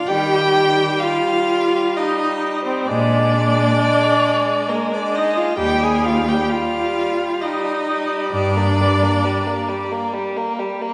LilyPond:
<<
  \new Staff \with { instrumentName = "Violin" } { \time 3/4 \key ees \major \tempo 4 = 66 g''4 f''4 ees''8. c''16 | d''2 bes'16 d''16 ees''16 f''16 | g''16 aes''16 f''16 g''16 f''4 ees''4 | d''2 r4 | }
  \new Staff \with { instrumentName = "Viola" } { \time 3/4 \key ees \major g'4 f'4 ees'8. c'16 | d'2 bes16 d'16 ees'16 f'16 | g'16 aes'16 f'16 g'16 f'4 ees'4 | d'2 r4 | }
  \new Staff \with { instrumentName = "Violin" } { \clef bass \time 3/4 \key ees \major g16 g16 g16 g16 g16 g16 g16 g16 g16 g16 g16 g16 | aes16 aes16 aes16 aes16 aes16 aes16 aes16 aes16 aes16 aes16 aes16 aes16 | g16 g16 g16 g16 g16 g16 g16 g16 g16 g16 g16 g16 | g16 bes16 g16 bes16 g16 bes16 g16 bes16 g16 bes16 g16 bes16 | }
  \new Staff \with { instrumentName = "Cello" } { \clef bass \time 3/4 \key ees \major ees4 r2 | bes,4 r2 | ees,4 r2 | g,4 r2 | }
>>